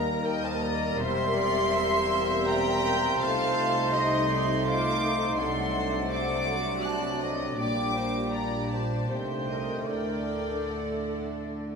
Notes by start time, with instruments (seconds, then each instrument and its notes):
Already playing: cello section D#2, double bass section D#2, trombone section D#3 G3, viola section A#3 A#4, french horn section A#3 D#4, violin section A#4 A#5, trumpet A#4, flute section D#5
0.24 flute section A#4, violin section D#5 G5
0.43 flute section C5, violin section A5
0.60 flute section D5, violin section A#5
0.97 double bass section E1, cello section E2, trombone section C3, viola section C4, french horn section G4, violin section C5 C6, trumpet C5, flute section E5
1.36 violin section D5
1.73 violin section E5
2.46 flute section E5, violin section G5 A#5
3.20 double bass section C2, cello section C3, french horn section A3 D#4, trombone section A3, viola section F4 A4, flute section C5, violin section F5 A5
3.93 viola section D#4 G4, flute section D#5, violin section D#5 C6
4.29 viola section D#4, violin section D5
4.65 viola section F4 A4, violin section C5 D6, flute section F5
5.02 viola section D#4, violin section A#4
5.37 double bass section C2, cello section C3, trombone section C3 F#3, viola section D4 A4, violin section A4 C6, trumpet D5, flute section F#5
5.75 violin section C5
6.11 viola section C4 A4, french horn section D4, flute section F#5, violin section D6
6.47 viola section F#4
6.83 viola section C4, violin section D5 F#6, flute section A5
7.21 violin section D#5
7.57 double bass section A#1, cello section A#2, trombone section A#2 G3, french horn section A#3, viola section D4 G4, violin section D5 D6, flute section G5
7.96 violin section C5
8.32 viola section D4, flute section D5, violin section D5 A#5
8.71 flute section C5, violin section A5
9.08 double bass section C2, cello section C3, trombone section C3 A3, french horn section D#4, viola section G4, flute section C5, trumpet C5, violin section C5 G5
9.48 viola section A#4, violin section D#5
9.86 double bass section D2, trombone section A2, cello section D3, french horn section A3 D4, viola section D4 A4, flute section A#4, trumpet D5, violin section D5 G5
10.67 flute section A4, violin section F#5